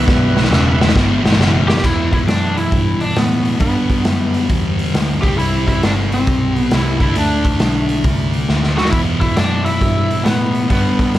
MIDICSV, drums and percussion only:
0, 0, Header, 1, 2, 480
1, 0, Start_track
1, 0, Key_signature, 1, "minor"
1, 0, Tempo, 442478
1, 89, Time_signature, 4, 2, 24, 8
1, 12136, End_track
2, 0, Start_track
2, 0, Title_t, "Drums"
2, 85, Note_on_c, 9, 36, 110
2, 88, Note_on_c, 9, 38, 65
2, 193, Note_off_c, 9, 36, 0
2, 197, Note_off_c, 9, 38, 0
2, 399, Note_on_c, 9, 38, 67
2, 480, Note_off_c, 9, 38, 0
2, 480, Note_on_c, 9, 38, 60
2, 571, Note_off_c, 9, 38, 0
2, 571, Note_on_c, 9, 38, 76
2, 679, Note_off_c, 9, 38, 0
2, 884, Note_on_c, 9, 38, 84
2, 965, Note_off_c, 9, 38, 0
2, 965, Note_on_c, 9, 38, 76
2, 1037, Note_on_c, 9, 36, 91
2, 1046, Note_off_c, 9, 38, 0
2, 1046, Note_on_c, 9, 38, 92
2, 1146, Note_off_c, 9, 36, 0
2, 1154, Note_off_c, 9, 38, 0
2, 1361, Note_on_c, 9, 38, 82
2, 1438, Note_off_c, 9, 38, 0
2, 1438, Note_on_c, 9, 38, 77
2, 1528, Note_off_c, 9, 38, 0
2, 1528, Note_on_c, 9, 38, 96
2, 1636, Note_off_c, 9, 38, 0
2, 1839, Note_on_c, 9, 38, 94
2, 1924, Note_off_c, 9, 38, 0
2, 1924, Note_on_c, 9, 38, 77
2, 1995, Note_on_c, 9, 36, 96
2, 1999, Note_on_c, 9, 49, 73
2, 2033, Note_off_c, 9, 38, 0
2, 2104, Note_off_c, 9, 36, 0
2, 2107, Note_off_c, 9, 49, 0
2, 2308, Note_on_c, 9, 36, 76
2, 2310, Note_on_c, 9, 46, 42
2, 2417, Note_off_c, 9, 36, 0
2, 2418, Note_off_c, 9, 46, 0
2, 2477, Note_on_c, 9, 46, 56
2, 2482, Note_on_c, 9, 38, 97
2, 2585, Note_off_c, 9, 46, 0
2, 2591, Note_off_c, 9, 38, 0
2, 2792, Note_on_c, 9, 46, 41
2, 2900, Note_off_c, 9, 46, 0
2, 2952, Note_on_c, 9, 36, 97
2, 2952, Note_on_c, 9, 46, 54
2, 3060, Note_off_c, 9, 46, 0
2, 3061, Note_off_c, 9, 36, 0
2, 3260, Note_on_c, 9, 46, 40
2, 3369, Note_off_c, 9, 46, 0
2, 3430, Note_on_c, 9, 46, 61
2, 3436, Note_on_c, 9, 38, 95
2, 3539, Note_off_c, 9, 46, 0
2, 3544, Note_off_c, 9, 38, 0
2, 3745, Note_on_c, 9, 46, 41
2, 3853, Note_off_c, 9, 46, 0
2, 3905, Note_on_c, 9, 46, 58
2, 3912, Note_on_c, 9, 36, 94
2, 4013, Note_off_c, 9, 46, 0
2, 4020, Note_off_c, 9, 36, 0
2, 4226, Note_on_c, 9, 46, 45
2, 4227, Note_on_c, 9, 36, 70
2, 4334, Note_off_c, 9, 46, 0
2, 4336, Note_off_c, 9, 36, 0
2, 4391, Note_on_c, 9, 46, 59
2, 4397, Note_on_c, 9, 38, 96
2, 4500, Note_off_c, 9, 46, 0
2, 4505, Note_off_c, 9, 38, 0
2, 4708, Note_on_c, 9, 46, 47
2, 4817, Note_off_c, 9, 46, 0
2, 4876, Note_on_c, 9, 46, 59
2, 4879, Note_on_c, 9, 36, 100
2, 4984, Note_off_c, 9, 46, 0
2, 4988, Note_off_c, 9, 36, 0
2, 5195, Note_on_c, 9, 46, 44
2, 5304, Note_off_c, 9, 46, 0
2, 5366, Note_on_c, 9, 46, 60
2, 5371, Note_on_c, 9, 38, 89
2, 5474, Note_off_c, 9, 46, 0
2, 5480, Note_off_c, 9, 38, 0
2, 5678, Note_on_c, 9, 36, 88
2, 5682, Note_on_c, 9, 46, 43
2, 5786, Note_off_c, 9, 36, 0
2, 5791, Note_off_c, 9, 46, 0
2, 5852, Note_on_c, 9, 46, 56
2, 5960, Note_off_c, 9, 46, 0
2, 6158, Note_on_c, 9, 36, 72
2, 6162, Note_on_c, 9, 46, 43
2, 6267, Note_off_c, 9, 36, 0
2, 6270, Note_off_c, 9, 46, 0
2, 6324, Note_on_c, 9, 46, 55
2, 6330, Note_on_c, 9, 38, 95
2, 6433, Note_off_c, 9, 46, 0
2, 6438, Note_off_c, 9, 38, 0
2, 6641, Note_on_c, 9, 46, 42
2, 6750, Note_off_c, 9, 46, 0
2, 6802, Note_on_c, 9, 46, 59
2, 6806, Note_on_c, 9, 36, 93
2, 6911, Note_off_c, 9, 46, 0
2, 6914, Note_off_c, 9, 36, 0
2, 7118, Note_on_c, 9, 46, 38
2, 7226, Note_off_c, 9, 46, 0
2, 7281, Note_on_c, 9, 46, 57
2, 7286, Note_on_c, 9, 38, 93
2, 7389, Note_off_c, 9, 46, 0
2, 7395, Note_off_c, 9, 38, 0
2, 7596, Note_on_c, 9, 46, 41
2, 7597, Note_on_c, 9, 36, 79
2, 7705, Note_off_c, 9, 46, 0
2, 7706, Note_off_c, 9, 36, 0
2, 7761, Note_on_c, 9, 46, 57
2, 7870, Note_off_c, 9, 46, 0
2, 8075, Note_on_c, 9, 46, 43
2, 8079, Note_on_c, 9, 36, 70
2, 8184, Note_off_c, 9, 46, 0
2, 8187, Note_off_c, 9, 36, 0
2, 8240, Note_on_c, 9, 46, 62
2, 8246, Note_on_c, 9, 38, 103
2, 8349, Note_off_c, 9, 46, 0
2, 8354, Note_off_c, 9, 38, 0
2, 8559, Note_on_c, 9, 46, 46
2, 8667, Note_off_c, 9, 46, 0
2, 8724, Note_on_c, 9, 46, 62
2, 8726, Note_on_c, 9, 36, 93
2, 8832, Note_off_c, 9, 46, 0
2, 8835, Note_off_c, 9, 36, 0
2, 9043, Note_on_c, 9, 46, 45
2, 9152, Note_off_c, 9, 46, 0
2, 9210, Note_on_c, 9, 38, 46
2, 9318, Note_off_c, 9, 38, 0
2, 9366, Note_on_c, 9, 38, 46
2, 9475, Note_off_c, 9, 38, 0
2, 9518, Note_on_c, 9, 38, 63
2, 9602, Note_off_c, 9, 38, 0
2, 9602, Note_on_c, 9, 38, 63
2, 9681, Note_on_c, 9, 46, 61
2, 9684, Note_on_c, 9, 36, 96
2, 9710, Note_off_c, 9, 38, 0
2, 9789, Note_off_c, 9, 46, 0
2, 9792, Note_off_c, 9, 36, 0
2, 9993, Note_on_c, 9, 46, 45
2, 9998, Note_on_c, 9, 36, 71
2, 10102, Note_off_c, 9, 46, 0
2, 10106, Note_off_c, 9, 36, 0
2, 10161, Note_on_c, 9, 46, 62
2, 10166, Note_on_c, 9, 38, 101
2, 10269, Note_off_c, 9, 46, 0
2, 10275, Note_off_c, 9, 38, 0
2, 10478, Note_on_c, 9, 46, 45
2, 10587, Note_off_c, 9, 46, 0
2, 10646, Note_on_c, 9, 36, 97
2, 10647, Note_on_c, 9, 46, 55
2, 10755, Note_off_c, 9, 36, 0
2, 10755, Note_off_c, 9, 46, 0
2, 10963, Note_on_c, 9, 46, 42
2, 11071, Note_off_c, 9, 46, 0
2, 11126, Note_on_c, 9, 46, 57
2, 11132, Note_on_c, 9, 38, 92
2, 11235, Note_off_c, 9, 46, 0
2, 11240, Note_off_c, 9, 38, 0
2, 11441, Note_on_c, 9, 46, 39
2, 11550, Note_off_c, 9, 46, 0
2, 11609, Note_on_c, 9, 46, 56
2, 11610, Note_on_c, 9, 36, 96
2, 11718, Note_off_c, 9, 46, 0
2, 11719, Note_off_c, 9, 36, 0
2, 11923, Note_on_c, 9, 36, 75
2, 11925, Note_on_c, 9, 46, 45
2, 12032, Note_off_c, 9, 36, 0
2, 12033, Note_off_c, 9, 46, 0
2, 12090, Note_on_c, 9, 46, 58
2, 12095, Note_on_c, 9, 38, 97
2, 12136, Note_off_c, 9, 38, 0
2, 12136, Note_off_c, 9, 46, 0
2, 12136, End_track
0, 0, End_of_file